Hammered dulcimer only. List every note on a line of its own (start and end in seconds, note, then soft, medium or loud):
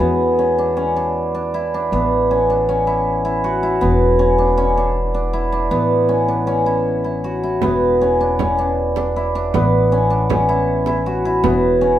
0.00 1.92 B3 medium
0.00 0.38 C#4 medium
0.00 1.54 E4 medium
0.00 2.68 F#4 medium
0.00 2.83 G#4 medium
0.39 0.64 C#4 medium
0.58 0.83 D4 medium
0.77 1.02 C#4 medium
0.96 1.34 D4 medium
1.35 1.74 D4 medium
1.54 2.87 E4 medium
1.74 2.37 D4 medium
1.93 3.81 B3 medium
2.31 2.56 C#4 medium
2.50 2.75 D4 medium
2.69 4.19 C#4 medium
2.87 3.24 E4 medium
3.25 3.62 E4 medium
3.44 6.69 F#4 medium
3.63 5.33 E4 medium
3.81 5.71 B3 medium
4.19 4.44 C#4 medium
4.38 4.63 D4 medium
4.57 4.83 C#4 medium
4.77 5.14 D4 medium
5.14 5.52 D4 medium
5.33 6.66 E4 medium
5.52 6.15 D4 medium
5.71 7.62 B3 medium
6.09 6.34 C#4 medium
6.28 6.53 D4 medium
6.47 8.01 C#4 medium
6.66 7.04 E4 medium
7.04 7.43 E4 medium
7.24 10.49 F#4 medium
7.43 9.16 E4 medium
7.63 9.54 B3 medium
8.01 8.27 C#4 medium
8.21 8.46 D4 medium
8.40 8.64 C#4 medium
8.58 8.96 D4 medium
8.97 9.35 D4 medium
9.16 10.48 E4 medium
9.35 9.98 D4 medium
9.54 11.43 B3 medium
9.92 10.16 C#4 medium
10.10 10.36 D4 medium
10.30 11.81 C#4 medium
10.49 10.87 E4 medium
10.87 11.25 E4 medium
11.06 11.99 F#4 medium
11.25 11.99 E4 medium
11.44 11.99 B3 medium
11.81 11.99 C#4 medium